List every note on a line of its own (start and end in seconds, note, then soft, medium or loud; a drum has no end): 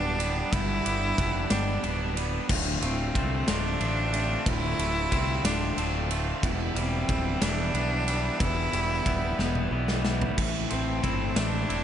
0.00 0.41 D1 medium
0.00 0.51 G2 loud
0.00 0.20 G3 medium
0.00 1.18 G3 medium
0.00 0.18 B3 medium
0.00 0.19 B3 medium
0.00 0.19 D4 medium
0.00 0.55 D4 loud
0.00 0.17 G4 medium
0.19 0.52 G3 medium
0.19 0.52 B3 medium
0.19 0.53 D4 medium
0.19 0.52 G4 medium
0.19 ride medium
0.52 0.80 G1 loud
0.52 1.18 G2 medium
0.52 1.18 D3 medium
0.52 0.85 G3 loud
0.52 0.85 B3 loud
0.52 0.85 D4 loud
0.52 1.52 E4 loud
0.52 0.84 G4 medium
0.52 kick loud
0.52 ride loud
0.85 1.13 G1 medium
0.85 1.17 G3 medium
0.85 1.17 B3 medium
0.85 1.18 D4 medium
0.85 1.18 G4 medium
0.85 ride medium
1.18 1.45 F1 medium
1.18 1.51 G3 medium
1.18 1.51 B3 medium
1.18 1.51 D4 medium
1.18 1.49 G4 medium
1.18 kick medium
1.18 ride medium
1.50 1.78 G1 loud
1.50 1.81 G3 medium
1.50 1.82 B3 medium
1.50 2.25 D4 loud
1.50 1.83 D4 medium
1.50 1.83 G4 medium
1.50 snare loud
1.50 ride loud
1.83 2.38 D1 medium
1.83 2.16 G3 medium
1.83 2.15 B3 medium
1.83 2.16 D4 medium
1.83 2.14 G4 medium
1.83 ride medium
2.16 2.48 G3 medium
2.16 2.47 B3 medium
2.16 2.49 D4 medium
2.16 2.47 G4 medium
2.16 ride medium
2.48 2.77 D1 loud
2.48 3.19 D2 medium
2.48 3.15 A2 loud
2.48 2.83 D3 loud
2.48 2.83 A3 medium
2.48 2.82 C4 loud
2.48 2.81 F4 loud
2.48 kick loud
2.48 crash loud
2.81 3.09 D1 medium
2.81 3.14 D3 medium
2.81 3.14 A3 medium
2.81 3.15 C4 medium
2.81 3.51 C4 medium
2.81 3.16 F4 medium
2.81 ride medium
3.14 3.42 C2 medium
3.14 3.48 D3 medium
3.14 3.47 A3 medium
3.14 3.47 C4 medium
3.14 3.46 F4 medium
3.14 kick medium
3.14 ride medium
3.48 3.75 D1 medium
3.48 3.79 D3 medium
3.48 3.79 A3 medium
3.48 3.80 C4 medium
3.48 4.48 D4 loud
3.48 3.81 F4 medium
3.48 snare loud
3.48 ride loud
3.80 4.35 A1 medium
3.80 4.13 D3 medium
3.80 4.13 A3 medium
3.80 4.12 C4 medium
3.80 4.12 F4 medium
3.80 ride medium
4.13 4.46 D3 medium
4.13 4.47 A3 medium
4.13 4.47 C4 medium
4.13 4.47 F4 medium
4.13 ride medium
4.46 4.73 D1 loud
4.46 5.12 D2 medium
4.46 5.12 A2 loud
4.46 4.80 D3 loud
4.46 4.79 A3 medium
4.46 4.79 C4 loud
4.46 5.47 E4 loud
4.46 4.78 F4 loud
4.46 kick loud
4.46 ride loud
4.79 5.06 D1 medium
4.79 5.10 D3 medium
4.79 5.11 A3 medium
4.79 5.12 C4 medium
4.79 5.12 F4 medium
4.79 ride medium
5.11 5.39 C2 medium
5.11 5.45 D3 medium
5.11 5.44 A3 medium
5.11 5.44 C4 medium
5.11 5.43 F4 medium
5.11 kick medium
5.11 ride medium
5.44 5.72 D1 loud
5.44 5.76 D3 medium
5.44 5.77 A3 medium
5.44 5.77 C4 medium
5.44 6.19 D4 loud
5.44 5.78 F4 medium
5.44 snare loud
5.44 ride loud
5.77 6.32 D1 medium
5.77 6.11 D3 medium
5.77 6.10 A3 medium
5.77 6.09 C4 medium
5.77 6.08 F4 loud
5.77 ride medium
6.10 6.42 D3 medium
6.10 6.42 A3 medium
6.10 6.41 C4 medium
6.10 6.41 F4 medium
6.10 ride medium
6.42 6.71 E1 loud
6.42 8.40 E2 loud
6.42 7.09 B2 loud
6.42 6.78 E3 medium
6.42 6.77 G3 loud
6.42 6.77 B3 loud
6.42 6.76 E4 loud
6.42 kick loud
6.42 ride loud
6.75 7.03 E1 loud
6.75 7.08 E3 medium
6.75 7.09 G3 medium
6.75 7.09 B3 medium
6.75 7.44 C4 loud
6.75 7.10 E4 medium
6.75 ride medium
7.08 7.36 D1 medium
7.08 7.43 E3 medium
7.08 7.41 G3 medium
7.08 7.41 B3 medium
7.08 7.41 E4 medium
7.08 kick medium
7.08 ride medium
7.41 7.69 E1 loud
7.41 7.74 E3 medium
7.41 7.74 G3 medium
7.41 7.74 B3 medium
7.41 8.43 D4 loud
7.41 7.76 E4 medium
7.41 snare loud
7.41 ride loud
7.74 8.29 B1 medium
7.74 8.09 E3 medium
7.74 8.07 G3 medium
7.74 8.07 B3 medium
7.74 8.07 E4 medium
7.74 ride medium
8.07 8.41 E3 medium
8.07 8.41 G3 medium
8.07 8.41 B3 medium
8.07 8.42 E4 medium
8.07 ride medium
8.40 8.68 E1 medium
8.40 9.06 E2 medium
8.40 9.07 B2 medium
8.40 8.75 E3 loud
8.40 8.74 G3 medium
8.40 8.73 B3 loud
8.40 9.41 E4 loud
8.40 8.73 E4 loud
8.40 kick loud
8.40 ride loud
8.73 9.00 E1 medium
8.73 9.05 E3 medium
8.73 9.05 G3 medium
8.73 9.06 B3 medium
8.73 9.07 E4 medium
8.73 ride medium
9.06 9.33 D1 medium
9.06 9.40 E3 medium
9.06 9.39 G3 medium
9.06 9.38 B3 medium
9.06 9.38 E4 medium
9.06 kick medium
9.06 ride medium
9.39 9.66 E1 medium
9.39 9.71 E3 medium
9.39 9.71 G3 medium
9.39 9.72 B3 medium
9.39 10.13 B3 loud
9.39 9.73 E4 medium
9.39 snare medium
9.55 high tom medium
9.71 10.26 B1 medium
9.71 10.06 E3 medium
9.71 10.04 G3 medium
9.71 10.04 B3 medium
9.71 10.04 E4 medium
9.88 snare medium
10.04 10.37 E3 medium
10.04 10.36 G3 medium
10.04 10.36 B3 medium
10.04 10.38 E4 medium
10.04 snare loud
10.22 floor tom medium
10.36 10.65 A1 loud
10.36 11.84 A2 medium
10.36 11.84 E3 loud
10.36 10.71 A3 loud
10.36 10.70 C4 medium
10.36 10.70 E4 medium
10.36 10.69 A4 medium
10.36 kick loud
10.36 ride loud
10.36 crash loud
10.69 10.98 A1 loud
10.69 11.01 A3 medium
10.69 11.02 C4 medium
10.69 11.37 C4 medium
10.69 11.03 E4 medium
10.69 11.03 A4 medium
10.69 ride medium
11.01 11.31 G1 medium
11.01 11.36 A3 medium
11.01 11.35 C4 medium
11.01 11.35 E4 medium
11.01 11.34 A4 medium
11.01 kick medium
11.01 ride medium
11.35 11.63 A1 loud
11.35 11.68 A3 medium
11.35 11.68 C4 medium
11.35 11.84 D4 loud
11.35 11.69 E4 medium
11.35 11.69 A4 medium
11.35 snare loud
11.35 ride loud
11.69 11.84 E1 medium
11.69 11.84 A3 medium
11.69 11.84 C4 medium
11.69 11.84 E4 loud
11.69 11.84 A4 medium
11.69 ride medium